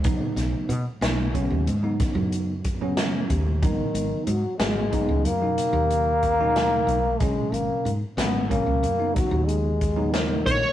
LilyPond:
<<
  \new Staff \with { instrumentName = "Lead electric guitar" } { \time 11/8 \key gis \minor \tempo 4 = 92 r1 r4. | r1 r4. | r1 r4 cis''8 | }
  \new Staff \with { instrumentName = "Trombone" } { \clef bass \time 11/8 \key gis \minor r1 r4. | dis4 fis8 gis4 ais2. | gis8 ais8 r8 b8 ais4 fis8 gis4 dis4 | }
  \new Staff \with { instrumentName = "Tine electric piano" } { \clef bass \time 11/8 \key gis \minor <cis fis b dis'>4 r8 <cis fis b dis'>16 r16 <cis fis b cis'>8 r16 <cis fis b dis'>4 r8 <cis fis b cis'>8. r8 | <cis fis b dis'>4 r8 <cis fis b fis'>16 r16 <cis fis b dis'>8 r16 <b, cis fis dis'>4 r8 <b, cis fis dis'>8. r8 | <b, cis fis cis'>4 r8 <cis fis b cis'>16 r16 <b, cis fis cis'>8 r16 <cis fis b dis'>4 r8 <cis fis b dis'>8. r8 | }
  \new Staff \with { instrumentName = "Fretless electric bass" } { \clef bass \time 11/8 \key gis \minor b,,16 r16 b,,16 r16 b,16 r16 b,,8. dis,16 gis,8 r16 fis,4.~ fis,16 dis,8 | gis,,16 r16 gis,,16 r16 gis,16 r16 gis,,8. cis,16 fis,8 r16 dis,4.~ dis,16 b,,8 | gis,,16 r16 gis,,16 r16 gis,16 r16 gis,,8. cis,16 fis,8 r16 dis,4.~ dis,16 ais,,16 r16 | }
  \new DrumStaff \with { instrumentName = "Drums" } \drummode { \time 11/8 <hh bd>8 <hh sn>8 hh8 <hh sn>8 <hh bd>8 hh8 <hh bd sn>8 hh8 <hh bd>8 <hh sn>8 <hh bd>8 | <hh bd>8 hh8 hh8 <hh sn>8 <hh bd>8 hh8 hh8 hh8 <hh bd>8 <hh sn>8 hh8 | <hh bd>8 hh8 hh8 <hh sn>8 <hh bd>8 hh8 <hh bd>8 hh8 <hh bd>8 <hh sn>8 <hh bd>8 | }
>>